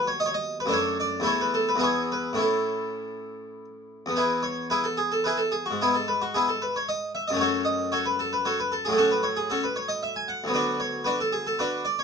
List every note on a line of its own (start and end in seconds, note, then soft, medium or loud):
0.00 0.65 D#2 medium
0.00 0.66 F#3 medium
0.00 0.67 B3 medium
0.00 0.68 A4 medium
0.07 0.20 C#5 medium
0.20 0.27 D#5 loud
0.26 0.33 C#5 medium
0.34 0.56 D#5 loud
0.60 0.73 B4 medium
0.66 1.21 F#2 medium
0.66 1.20 A3 medium
0.66 1.23 D4 soft
0.71 1.23 A4 medium
0.71 0.95 C#5 loud
1.00 1.23 D5 medium
1.20 1.74 E2 medium
1.20 1.78 A3 soft
1.20 1.78 E4 soft
1.25 1.53 A4 soft
1.25 1.40 C#5 medium
1.41 1.54 B4 medium
1.54 1.68 A4 medium
1.69 1.82 B4 medium
1.76 2.36 E2 medium
1.76 2.37 B3 soft
1.76 2.36 E4 soft
1.81 2.38 G#4 soft
1.81 2.12 C#5 medium
2.12 2.41 B4 medium
2.33 4.08 A2 soft
2.33 4.09 C#4 soft
2.33 4.10 E4 soft
2.40 3.65 A4 medium
4.06 5.71 E2 soft
4.06 5.72 B3 soft
4.16 4.42 E4 medium
4.16 4.42 G#4 medium
4.16 4.43 B4 medium
4.43 4.66 C#5 medium
4.70 4.84 E4 medium
4.70 4.84 G#4 soft
4.70 4.84 B4 medium
4.84 4.98 A4 medium
4.97 5.11 G#4 medium
5.12 5.25 A4 medium
5.24 5.39 E4 medium
5.24 5.38 G#4 medium
5.24 5.38 B4 medium
5.37 5.52 A4 medium
5.52 5.66 G#4 medium
5.66 5.80 F#4 medium
5.71 7.30 G#2 soft
5.81 5.94 B3 soft
5.81 5.94 E4 medium
5.81 5.94 G#4 medium
5.95 6.07 A4 medium
6.08 6.21 B4 medium
6.22 6.34 F#4 medium
6.34 6.47 B3 soft
6.34 6.47 E4 soft
6.34 6.47 G#4 medium
6.48 6.61 A4 medium
6.62 6.74 B4 medium
6.76 6.88 C#5 medium
6.89 7.10 D#5 medium
7.15 7.27 E5 medium
7.28 8.88 F#2 soft
7.28 7.40 D#5 medium
7.32 8.89 F#3 soft
7.32 8.90 A3 soft
7.36 8.91 C#4 soft
7.36 7.62 C#5 medium
7.41 7.64 F#4 soft
7.41 7.64 A4 medium
7.65 7.91 D#5 medium
7.92 8.04 F#4 medium
7.92 8.04 A4 medium
7.92 8.04 C#5 medium
8.06 8.18 B4 medium
8.19 8.31 A4 medium
8.33 8.45 B4 medium
8.45 8.57 F#4 medium
8.45 8.57 A4 medium
8.45 8.58 C#5 medium
8.60 8.71 B4 medium
8.72 8.84 A4 medium
8.85 10.44 A2 soft
8.85 8.97 G#4 medium
8.90 10.45 F#3 soft
8.90 10.46 A3 soft
8.97 9.09 C#4 medium
8.97 9.10 F#4 medium
8.97 9.10 A4 medium
9.11 9.23 B4 medium
9.23 9.36 C#5 medium
9.36 9.49 G#4 medium
9.50 9.62 C#4 soft
9.50 9.62 F#4 soft
9.50 9.62 A4 medium
9.64 9.76 B4 medium
9.76 9.88 C#5 medium
9.88 10.01 D#5 medium
10.03 10.15 E5 medium
10.16 10.28 G#5 medium
10.28 10.53 F#5 medium
10.44 12.02 D2 soft
10.44 12.03 F#3 soft
10.48 12.04 B3 soft
10.54 10.78 D4 medium
10.54 10.78 F#4 medium
10.54 10.79 B4 medium
10.80 11.05 C#5 medium
11.04 11.18 D4 medium
11.04 11.18 F#4 medium
11.04 11.18 B4 medium
11.20 11.32 A4 medium
11.33 11.45 G#4 medium
11.47 11.59 A4 medium
11.59 11.84 D4 medium
11.59 11.84 F#4 medium
11.59 11.81 B4 medium
11.85 11.98 D5 medium
11.99 12.04 C#5 medium